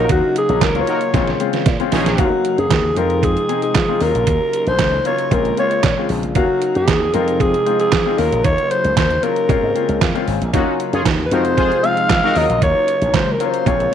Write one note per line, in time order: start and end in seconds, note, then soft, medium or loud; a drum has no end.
0.00 2.16 C#3 medium
0.00 0.36 F#3 medium
0.00 1.13 F#3 medium
0.00 0.36 A#3 medium
0.00 2.16 A#3 medium
0.00 0.36 C#4 medium
0.00 1.12 D#4 medium
0.00 0.36 F4 medium
0.00 0.11 A#4 medium
0.09 0.20 D#2 loud
0.09 0.35 F#4 loud
0.09 kick loud
0.09 closed hi-hat medium
0.36 0.65 G#4 medium
0.36 closed hi-hat medium
0.49 0.58 A#1 medium
0.49 0.64 F#3 medium
0.49 0.64 A#3 medium
0.49 0.64 C#4 medium
0.49 0.64 D#4 medium
0.49 closed hi-hat soft
0.61 0.81 C#2 medium
0.61 0.82 A#4 medium
0.61 kick loud
0.61 snare loud
0.61 clap loud
0.61 closed hi-hat medium
0.75 1.13 F#3 medium
0.75 1.13 A#3 medium
0.75 1.12 C#4 medium
0.75 1.13 F4 medium
0.75 closed hi-hat soft
0.81 1.32 C#5 medium
0.87 1.00 D#4 medium
0.87 1.00 F#4 medium
0.87 1.00 A#4 loud
0.87 closed hi-hat medium
1.01 closed hi-hat soft
1.14 1.33 A#1 loud
1.14 1.35 G#3 medium
1.14 2.18 G#3 medium
1.14 1.35 C4 medium
1.14 1.35 C#4 medium
1.14 2.17 F4 medium
1.14 1.35 F4 medium
1.14 kick loud
1.14 snare medium
1.14 closed hi-hat medium
1.27 snare medium
1.40 1.63 G#3 medium
1.40 1.63 C4 medium
1.40 1.63 C#4 medium
1.40 1.63 F4 medium
1.40 closed hi-hat medium
1.53 snare medium
1.53 closed hi-hat soft
1.66 1.76 A#2 loud
1.66 kick loud
1.66 snare medium
1.66 closed hi-hat loud
1.80 2.03 G#3 medium
1.80 2.03 C4 medium
1.80 2.03 C#4 medium
1.80 2.03 F4 medium
1.80 closed hi-hat soft
1.92 2.02 A#1 medium
1.92 2.26 C#4 loud
1.92 2.26 D#4 loud
1.92 2.26 G#4 loud
1.92 snare loud
1.92 open hi-hat medium
2.06 2.15 A#1 medium
2.06 snare medium
2.06 closed hi-hat medium
2.18 2.29 D#2 loud
2.18 2.96 C#3 medium
2.18 2.64 F#3 medium
2.18 2.96 F#3 medium
2.18 2.96 A#3 medium
2.18 2.65 A#3 medium
2.18 2.65 C#4 medium
2.18 5.29 D#4 medium
2.18 2.61 F#4 medium
2.18 2.65 F5 medium
2.18 kick loud
2.18 closed hi-hat medium
2.45 closed hi-hat medium
2.58 2.67 F#2 medium
2.58 2.99 G#4 medium
2.58 closed hi-hat soft
2.71 2.90 D#2 medium
2.71 kick loud
2.71 snare loud
2.71 clap loud
2.71 closed hi-hat medium
2.97 3.35 F2 loud
2.97 4.00 C3 medium
2.97 4.00 F3 medium
2.97 4.00 G#3 medium
2.97 3.39 G#3 medium
2.97 3.39 C4 medium
2.97 3.39 D#4 medium
2.97 3.39 F4 medium
2.97 3.25 A#4 medium
2.97 closed hi-hat medium
3.10 closed hi-hat soft
3.23 3.63 G#4 medium
3.23 kick loud
3.23 closed hi-hat medium
3.37 closed hi-hat soft
3.48 3.72 G#3 medium
3.48 3.72 C4 medium
3.48 3.72 D#4 medium
3.48 3.72 G#4 medium
3.48 closed hi-hat medium
3.62 4.04 G#4 medium
3.62 closed hi-hat soft
3.75 3.85 F3 loud
3.75 kick loud
3.75 snare loud
3.75 clap loud
3.75 closed hi-hat loud
3.88 4.01 G#3 medium
3.88 4.01 C4 medium
3.88 4.01 D#4 medium
3.88 4.00 F4 medium
4.01 4.11 D#2 medium
4.01 5.30 C#3 medium
4.01 4.85 F#3 medium
4.01 5.30 F#3 medium
4.01 4.85 A#3 medium
4.01 7.11 A#3 medium
4.01 4.85 C#4 medium
4.01 4.85 F4 medium
4.01 4.70 A#4 loud
4.01 open hi-hat medium
4.15 4.24 A#1 medium
4.15 closed hi-hat medium
4.27 4.37 D#2 loud
4.27 kick loud
4.27 closed hi-hat medium
4.53 closed hi-hat medium
4.67 4.76 A#1 medium
4.67 5.06 C5 loud
4.67 closed hi-hat soft
4.79 4.98 C#2 loud
4.79 kick loud
4.79 snare loud
4.79 clap loud
4.79 closed hi-hat medium
5.05 5.31 F#3 medium
5.05 5.31 A#3 medium
5.05 5.30 C#4 medium
5.05 5.30 F4 medium
5.05 5.35 C#5 loud
5.05 closed hi-hat medium
5.19 closed hi-hat soft
5.31 5.51 A#1 loud
5.31 7.12 C#3 medium
5.31 5.52 G#3 medium
5.31 6.35 G#3 medium
5.31 5.52 C4 medium
5.31 5.53 C#4 medium
5.31 6.35 F4 medium
5.31 5.53 F4 medium
5.31 5.58 A#4 loud
5.31 kick medium
5.31 closed hi-hat medium
5.45 closed hi-hat soft
5.57 5.81 G#3 medium
5.57 5.81 C4 medium
5.57 5.81 C#4 medium
5.57 5.81 F4 medium
5.57 6.07 C#5 medium
5.57 closed hi-hat medium
5.71 closed hi-hat soft
5.83 5.94 A#2 loud
5.83 kick loud
5.83 snare loud
5.83 clap loud
5.83 closed hi-hat loud
5.97 6.20 G#3 medium
5.97 6.20 C4 medium
5.97 6.20 C#4 medium
5.97 6.20 F4 medium
6.09 6.20 A#1 medium
6.09 open hi-hat medium
6.23 6.33 A#1 medium
6.23 closed hi-hat medium
6.35 6.46 D#2 loud
6.35 6.82 F#3 medium
6.35 7.13 F#3 medium
6.35 6.82 A#3 medium
6.35 6.82 C#4 medium
6.35 9.46 D#4 medium
6.35 6.78 F#4 medium
6.35 6.82 F5 medium
6.35 kick loud
6.35 closed hi-hat medium
6.62 closed hi-hat medium
6.75 6.88 F#2 medium
6.75 7.16 G#4 loud
6.75 closed hi-hat soft
6.88 7.07 D#2 medium
6.88 kick loud
6.88 snare loud
6.88 clap loud
6.88 closed hi-hat medium
7.13 7.53 F2 medium
7.13 8.17 C3 medium
7.13 8.17 F3 medium
7.13 8.17 G#3 medium
7.13 7.56 G#3 medium
7.13 7.56 C4 medium
7.13 7.57 D#4 medium
7.13 7.57 F4 medium
7.13 7.42 A#4 medium
7.13 closed hi-hat medium
7.28 closed hi-hat soft
7.40 7.80 G#4 medium
7.40 kick loud
7.40 closed hi-hat medium
7.54 closed hi-hat soft
7.66 7.89 G#3 medium
7.66 7.89 C4 medium
7.66 7.89 D#4 medium
7.66 7.89 F4 medium
7.66 closed hi-hat medium
7.80 8.20 G#4 loud
7.80 closed hi-hat soft
7.92 8.03 F3 loud
7.92 kick loud
7.92 snare loud
7.92 clap loud
7.92 closed hi-hat medium
8.06 8.18 G#3 medium
8.06 8.18 C4 medium
8.06 8.18 D#4 medium
8.06 8.17 F4 medium
8.18 8.29 D#2 medium
8.18 11.29 C#3 medium
8.18 9.02 F#3 medium
8.18 9.48 F#3 medium
8.18 9.02 A#3 medium
8.18 9.48 A#3 medium
8.18 9.02 C#4 medium
8.18 9.02 F4 medium
8.18 8.46 A#4 loud
8.18 open hi-hat medium
8.32 8.41 A#1 medium
8.32 closed hi-hat medium
8.44 8.55 D#2 medium
8.44 8.72 C#5 loud
8.44 kick loud
8.44 closed hi-hat medium
8.58 closed hi-hat soft
8.71 8.97 C5 loud
8.71 closed hi-hat medium
8.84 8.94 C#2 medium
8.84 closed hi-hat soft
8.97 9.16 D#2 medium
8.97 9.25 C5 medium
8.97 kick loud
8.97 snare loud
8.97 clap medium
8.97 closed hi-hat medium
9.10 closed hi-hat soft
9.22 9.49 F#3 medium
9.22 9.49 A#3 medium
9.22 9.47 C#4 medium
9.22 9.48 F4 medium
9.22 10.27 A#4 medium
9.22 closed hi-hat medium
9.36 closed hi-hat medium
9.48 9.59 A#2 loud
9.48 9.70 G#3 medium
9.48 10.52 G#3 medium
9.48 11.30 A#3 medium
9.48 9.70 C4 medium
9.48 9.70 C#4 medium
9.48 9.70 F4 medium
9.48 10.52 F4 medium
9.48 kick loud
9.48 closed hi-hat medium
9.63 9.72 G#2 medium
9.75 9.98 G#3 medium
9.75 9.98 C4 medium
9.75 9.98 C#4 medium
9.75 9.98 F4 medium
9.75 closed hi-hat medium
9.89 9.98 C#2 medium
9.89 closed hi-hat soft
10.01 10.12 F2 loud
10.01 10.25 F5 medium
10.01 kick loud
10.01 snare loud
10.01 clap loud
10.01 closed hi-hat loud
10.15 10.37 G#3 medium
10.15 10.38 C4 medium
10.15 10.38 C#4 medium
10.15 10.38 F4 medium
10.15 closed hi-hat soft
10.27 10.38 G#1 medium
10.27 10.52 G#5 medium
10.27 open hi-hat medium
10.41 10.50 A#1 medium
10.41 closed hi-hat medium
10.53 10.64 D#2 loud
10.53 10.99 F#3 medium
10.53 11.31 F#3 medium
10.53 10.99 A#3 medium
10.53 11.00 C#4 medium
10.53 10.74 C#4 loud
10.53 13.63 D#4 loud
10.53 10.74 D#4 loud
10.53 11.00 F4 medium
10.53 10.74 F#4 loud
10.53 kick loud
10.53 closed hi-hat medium
10.80 closed hi-hat medium
10.93 11.02 F#2 medium
10.93 11.03 C#4 medium
10.93 11.03 F4 loud
10.93 11.03 G#4 loud
10.93 closed hi-hat soft
11.05 11.25 D#2 medium
11.05 kick loud
11.05 snare loud
11.05 clap loud
11.05 closed hi-hat medium
11.26 11.35 B4 medium
11.31 11.70 F2 loud
11.31 12.35 C3 medium
11.31 12.35 F3 medium
11.31 12.35 G#3 medium
11.31 11.74 G#3 medium
11.31 11.74 C4 medium
11.31 11.42 D#4 medium
11.31 11.74 D#4 medium
11.31 11.74 F4 medium
11.31 11.42 F#4 medium
11.31 11.42 A#4 medium
11.31 11.87 C5 loud
11.31 closed hi-hat medium
11.45 closed hi-hat soft
11.57 11.78 F4 loud
11.57 11.78 G#4 loud
11.57 11.78 C5 loud
11.57 kick loud
11.57 closed hi-hat medium
11.72 closed hi-hat soft
11.83 12.07 G#3 medium
11.83 12.07 C4 medium
11.83 12.07 D#4 medium
11.83 12.07 F4 medium
11.83 12.39 F5 loud
11.83 closed hi-hat medium
11.97 closed hi-hat soft
12.10 12.20 F3 loud
12.10 kick loud
12.10 snare loud
12.10 clap loud
12.10 closed hi-hat loud
12.23 12.36 G#3 medium
12.23 12.36 C4 medium
12.23 12.44 D#4 loud
12.23 12.36 D#4 medium
12.23 12.35 F4 medium
12.23 12.44 F#4 medium
12.23 12.44 A#4 loud
12.35 12.46 D#2 loud
12.35 13.94 C#3 medium
12.35 13.64 F#3 medium
12.35 13.19 F#3 medium
12.35 13.94 A#3 medium
12.35 13.19 A#3 medium
12.35 13.20 C#4 medium
12.35 13.20 F4 medium
12.35 12.63 D#5 loud
12.35 open hi-hat medium
12.50 12.59 A#1 loud
12.50 closed hi-hat medium
12.62 12.72 D#2 loud
12.62 13.16 C#5 loud
12.62 kick loud
12.62 closed hi-hat medium
12.88 closed hi-hat medium
13.02 13.11 A#1 medium
13.02 closed hi-hat soft
13.14 13.33 C#2 medium
13.14 13.34 C5 medium
13.14 kick loud
13.14 snare loud
13.14 clap loud
13.14 closed hi-hat medium
13.32 13.47 A#4 medium
13.40 13.66 F#3 medium
13.40 13.66 A#3 medium
13.40 13.65 C#4 medium
13.40 13.65 F4 medium
13.40 closed hi-hat medium
13.46 13.52 C#5 medium
13.50 13.69 C5 medium
13.50 closed hi-hat soft
13.66 13.86 A#1 loud
13.66 13.87 G#3 medium
13.66 13.94 G#3 medium
13.66 13.88 C4 medium
13.66 13.88 C#4 medium
13.66 13.94 F4 medium
13.66 13.88 F4 medium
13.66 13.94 C#5 medium
13.66 kick loud
13.66 closed hi-hat medium
13.80 closed hi-hat soft